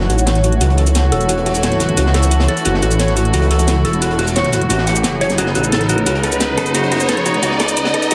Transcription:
Already playing: E3 A3 E4 F#4 B4 C#5 F#5, riser
0.00 A4, snare
0.10 A1 F#4, closed hi-hat, cabasa
0.18 cabasa
0.27 C#5, snare, closed hi-hat, cabasa
0.35 snare, closed hi-hat
0.44 F#4, closed hi-hat, cabasa
0.52 closed hi-hat
0.61 C#2 F#4, closed hi-hat, cabasa
0.70 closed hi-hat
0.77 A4, closed hi-hat
0.86 closed hi-hat, cabasa
0.95 snare, closed hi-hat, cabasa
1.12 E1 A4, closed hi-hat
1.21 closed hi-hat, cabasa
1.29 F#4, closed hi-hat, cabasa
1.38 closed hi-hat
1.46 F#4, closed hi-hat, open hi-hat, cabasa
1.55 cabasa
1.63 C#5, snare, closed hi-hat, cabasa
1.71 snare, closed hi-hat
1.80 F#4, snare, closed hi-hat, cabasa
1.89 closed hi-hat
1.97 C#2 F#4, closed hi-hat, cabasa
2.06 snare
2.14 A4, snare, closed hi-hat, cabasa
2.23 snare, closed hi-hat, cabasa
2.31 closed hi-hat, cabasa
2.40 snare, closed hi-hat
2.48 A4, snare, closed hi-hat
2.57 closed hi-hat, cabasa
2.65 F#1 F#4, closed hi-hat, cabasa
2.74 snare
2.82 A1 F#4, closed hi-hat, cabasa
2.91 cabasa
2.99 C#5, snare, closed hi-hat, cabasa
3.08 snare, closed hi-hat
3.17 F#4, closed hi-hat, cabasa
3.25 closed hi-hat
3.34 C#2 F#4, closed hi-hat, cabasa
3.42 closed hi-hat
3.51 A4, closed hi-hat
3.59 closed hi-hat, cabasa
3.67 snare, closed hi-hat, cabasa
3.85 E1 A4, closed hi-hat
3.93 closed hi-hat, cabasa
4.02 F#4, closed hi-hat, cabasa
4.11 closed hi-hat
4.19 F#4, closed hi-hat, open hi-hat, cabasa
4.27 cabasa
4.36 C#5, snare, closed hi-hat, cabasa
4.44 snare, closed hi-hat
4.52 F#4, snare, closed hi-hat, cabasa
4.61 closed hi-hat
4.70 A1 F#4, closed hi-hat, cabasa
4.78 snare
4.87 F#5, snare, closed hi-hat, cabasa
4.96 closed hi-hat, cabasa
5.03 F#1, snare, closed hi-hat, cabasa
5.21 C#5, closed hi-hat
5.30 snare, closed hi-hat, cabasa
5.38 F#1 C#3 B3 D#4 F#4, closed hi-hat, cabasa
5.46 snare
5.55 A1 F#4 B4, closed hi-hat, cabasa
5.64 cabasa
5.72 A4, snare, closed hi-hat, cabasa
5.81 snare, closed hi-hat
5.89 F#4, closed hi-hat, cabasa
5.98 closed hi-hat
6.06 C#2 F#4, closed hi-hat, cabasa
6.15 closed hi-hat
6.23 A4, closed hi-hat
6.31 closed hi-hat, cabasa
6.40 snare, closed hi-hat, cabasa
6.57 F#1 A4, closed hi-hat
6.66 closed hi-hat, cabasa
6.75 F#4, closed hi-hat, cabasa
6.83 closed hi-hat
6.91 F#4, closed hi-hat, open hi-hat, cabasa
7.00 cabasa
7.09 A4, snare, closed hi-hat, cabasa
7.17 F1, snare, closed hi-hat
7.25 F#4, snare, closed hi-hat, cabasa
7.34 closed hi-hat
7.43 C#2 F#4, closed hi-hat, cabasa
7.51 snare
7.59 A4, snare, closed hi-hat, cabasa
7.68 snare, closed hi-hat, cabasa
7.76 closed hi-hat, cabasa
7.85 snare, closed hi-hat
7.93 A4, snare, closed hi-hat
8.02 closed hi-hat, cabasa
8.11 F#1 F#4, closed hi-hat, cabasa

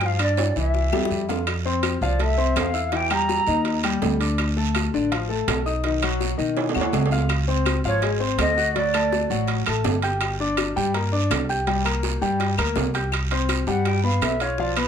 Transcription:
Already playing: G2
0.01 F3 F4, high bongo, high timbale, long guiro
0.05 F5
0.19 D4 D5, high bongo, high timbale, claves
0.37 high bongo, high timbale, short guiro
0.56 C2 E3 E4 E5, short guiro
0.74 high bongo, long guiro
0.92 E2 G3 G4, high bongo, low timbale, claves
1.05 high bongo
1.10 F2, short guiro
1.29 F4 F5, low bongo, low timbale, short guiro
1.47 high bongo, high timbale, long guiro, claves
1.65 C4 C5 C6
1.83 high bongo, high timbale, low timbale, short guiro, claves
2.01 C2 F3 F4 D5 F5, short guiro
2.19 A3 A4 E5 A5, high bongo, high timbale, long guiro
2.38 C4 C5 C6
2.56 E2 F5, high bongo, low bongo, high timbale, low timbale, short guiro, claves
2.74 E4 E5 E6, short guiro
2.92 E3 E4 E5 G5, high bongo, high timbale, long guiro
3.10 G3 G4 G5 A#5, high bongo, high timbale, claves
3.29 high bongo, low timbale, short guiro
3.47 D#2 D#3 D#4 D#5, short guiro
3.65 high bongo, high timbale, long guiro
3.84 G3 G4 G5, high bongo, high timbale, claves
4.02 D2, high bongo, low bongo, low timbale, short guiro
4.20 D4 D5 D6, high bongo, high timbale, short guiro
4.38 high bongo, high timbale, long guiro, claves
4.57 A3 A4 A5
4.75 high bongo, high timbale, low timbale, short guiro, claves
4.94 A1 D3 D4 D5, short guiro
5.11 F3 F4 F5, high bongo, high timbale, long guiro
5.29 A3 A4 A5
5.48 B1, high bongo, low bongo, high timbale, low timbale, short guiro, claves
5.66 D#4 D#5 D#6, short guiro
5.84 D#3 D#4 D#5, high bongo, high timbale, long guiro
6.02 F#3 F#4 F#5, high bongo, high timbale, claves
6.21 high bongo, low timbale, short guiro
6.38 B2 D#3 D#4 D#5, short guiro
6.57 high bongo, high timbale, long guiro
6.69 low timbale
6.75 D#2 F#3 F#4 F#5, high bongo, claves
6.81 high timbale
6.93 C#2, high bongo, low bongo, low timbale, short guiro
7.06 low timbale
7.11 F4 F5 F6, high bongo, short guiro
7.18 low timbale
7.29 high bongo, high timbale, long guiro, claves
7.48 C4 C5 C6
7.66 high bongo, high timbale, low timbale, short guiro, claves
7.84 G#1 F3 F4 C#5 F5, short guiro
8.02 G#3 G#4 G#5, high bongo, high timbale, long guiro
8.20 C4 C5 C6
8.38 D2 D#5, high bongo, low bongo, high timbale, low timbale, short guiro, claves
8.57 F#4 F#5 F#6, short guiro
8.75 F#3 F#4 D5 F#5, high bongo, high timbale, long guiro
8.94 A3 A4 A5, high bongo, high timbale, claves
9.12 high bongo, low timbale, short guiro
9.30 A1 F#3 F#4 F#5, short guiro
9.47 high bongo, high timbale, long guiro
9.66 A1 A3 A4 A5, high bongo, high timbale, claves
9.84 G1, high bongo, low bongo, low timbale, short guiro
10.02 G4 G5 G6, high bongo, high timbale, short guiro
10.21 high bongo, high timbale, long guiro, claves
10.40 D4 D5 D6
10.57 high bongo, high timbale, low timbale, short guiro, claves
10.76 G2 G3 G4 G5, short guiro
10.94 A#3 A#4 A#5, high bongo, high timbale, long guiro
11.12 D4 D5 D6
11.30 C2, high bongo, low bongo, high timbale, low timbale, short guiro, claves
11.49 G4 G5 G6, short guiro
11.67 G3 G4 G5, high bongo, high timbale, long guiro
11.85 A#3 A#4 A#5, high bongo, high timbale, claves
12.03 high bongo, low timbale, short guiro
12.21 G2 G3 G4 G5, short guiro
12.40 high bongo, high timbale, long guiro
12.58 D2 A#3 A#4 A#5, high bongo, high timbale, claves
12.76 C2, high bongo, low bongo, low timbale, short guiro
12.94 G4 G5 G6, high bongo, high timbale, short guiro
13.12 high bongo, high timbale, long guiro, claves
13.31 C4 C5 C6, high bongo, high timbale
13.49 high bongo, high timbale, short guiro, claves
13.67 G2 G3 G4 F#5 G5, high bongo, short guiro
13.85 G5, high bongo, high timbale, long guiro
14.03 B3 B4 F5 B5, high bongo
14.21 B1 E5, high bongo, low bongo, high timbale, low timbale, short guiro, claves
14.40 F4 C#5 F5 F6, high timbale, short guiro
14.58 F3 F4 D5 F5, high bongo, long guiro
14.77 B3 F4 B4 B5, high bongo, high timbale, claves

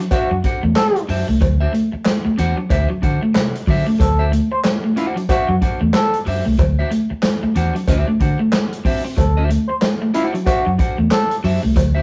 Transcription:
0.11 D4 F#4 C5 E5, muted fingered electric bass stroke, kick, closed hi-hat, cowbell
0.31 F#2 F#3, muted clean electric guitar stroke
0.44 D4 F#4 C5 F#5, muted clean electric guitar stroke, kick, closed hi-hat
0.63 E2 A3, muted clean electric guitar stroke
0.75 A4, muted clean electric guitar stroke, snare, clap, closed hi-hat, cowbell
0.96 closed hi-hat
1.09 F#2 F#3 D4 F#4 C5 E5, open hi-hat
1.28 C2 A3, muted clean electric guitar stroke
1.41 D2 F#3, muted clean electric guitar stroke, kick, closed hi-hat, cowbell
1.60 D4 F#4 C5 E5
1.73 A3, muted clean electric guitar stroke, closed hi-hat
1.93 muted clean electric guitar stroke, muted fingered electric bass stroke
2.05 muted clean electric guitar stroke, snare, clap, closed hi-hat, cowbell
2.25 A3, muted clean electric guitar stroke, muted fingered electric bass stroke
2.38 E2 D4 F#4 C5 F#5, muted clean electric guitar stroke, closed hi-hat
2.57 F#3, muted clean electric guitar stroke
2.69 D2 D4 F#4 C5 E5, kick, closed hi-hat, cowbell
2.90 F#3, muted clean electric guitar stroke
3.02 D3 D4 F#4 C5 F#5, muted clean electric guitar stroke, kick, closed hi-hat
3.22 A3, muted clean electric guitar stroke
3.35 C3, muted clean electric guitar stroke, snare, clap, closed hi-hat, cowbell
3.55 muted clean electric guitar stroke, closed hi-hat
3.67 D3 F#3 D4 F#4 C5 E5, kick, open hi-hat
3.87 A3, muted clean electric guitar stroke
4.00 D2 F#3 A4, muted clean electric guitar stroke, kick, closed hi-hat, cowbell
4.19 D4 F#4 C5 E5
4.32 A3, muted clean electric guitar stroke, closed hi-hat
4.51 C5, muted clean electric guitar stroke
4.64 muted clean electric guitar stroke, snare, clap, closed hi-hat, cowbell
4.84 A3, muted clean electric guitar stroke
4.96 D4 E4 F#4 C5 F#5, muted clean electric guitar stroke, closed hi-hat
5.16 F#3, muted clean electric guitar stroke, closed hi-hat
5.29 D4 F#4 C5 E5, muted fingered electric bass stroke, kick, closed hi-hat, cowbell
5.49 F#2 F#3, muted clean electric guitar stroke
5.62 D4 F#4 C5 F#5, muted clean electric guitar stroke, kick, closed hi-hat
5.81 E2 A3, muted clean electric guitar stroke
5.93 A4, muted clean electric guitar stroke, snare, clap, closed hi-hat, cowbell
6.13 closed hi-hat
6.26 F#2 F#3 D4 F#4 C5 E5, open hi-hat
6.45 C2 A3, muted clean electric guitar stroke
6.59 D2 F#3, muted clean electric guitar stroke, kick, closed hi-hat, cowbell
6.79 D4 F#4 C5 E5
6.91 A3, muted clean electric guitar stroke, closed hi-hat
7.11 muted clean electric guitar stroke, muted fingered electric bass stroke
7.22 muted clean electric guitar stroke, snare, clap, closed hi-hat, cowbell
7.43 A3, muted fingered electric bass stroke, muted clean electric guitar stroke
7.55 E2 D4 F#4 C5 F#5, muted clean electric guitar stroke, closed hi-hat
7.75 F#3, muted clean electric guitar stroke, closed hi-hat
7.88 D2 D4 F#4 C5 E5, kick, closed hi-hat, cowbell
8.08 A3, muted clean electric guitar stroke
8.20 D3 D4 F#4 C5 F#5, muted clean electric guitar stroke, kick, closed hi-hat
8.39 A3, muted clean electric guitar stroke
8.52 muted clean electric guitar stroke, snare, clap, closed hi-hat, cowbell
8.72 closed hi-hat
8.85 C4 D4 F#4 C5 E5, kick, open hi-hat
9.05 C4, muted clean electric guitar stroke
9.17 D2 F#3 A4, muted clean electric guitar stroke, kick, closed hi-hat, cowbell
9.37 D4 F#4 C5 E5
9.49 A3, muted clean electric guitar stroke, closed hi-hat
9.68 C5, muted clean electric guitar stroke
9.81 muted clean electric guitar stroke, snare, clap, closed hi-hat, cowbell
10.02 A3, muted clean electric guitar stroke
10.14 D4 E4 F#4 C5 F#5, muted clean electric guitar stroke, closed hi-hat
10.34 F#3, muted clean electric guitar stroke, closed hi-hat
10.46 D4 F#4 C5 E5, muted fingered electric bass stroke, kick, closed hi-hat, cowbell
10.66 F#2 F#3, muted clean electric guitar stroke
10.78 D4 F#4 C5 F#5, muted clean electric guitar stroke, kick, closed hi-hat
10.98 E2 A3, muted clean electric guitar stroke
11.11 A4, muted clean electric guitar stroke, snare, clap, closed hi-hat, cowbell
11.31 closed hi-hat
11.44 F#2 F#3 D4 F#4 C5 E5, open hi-hat
11.63 C2 A3, muted clean electric guitar stroke
11.76 D2 F#3, muted clean electric guitar stroke, kick, closed hi-hat, cowbell
11.95 D4 F#4 C5 E5

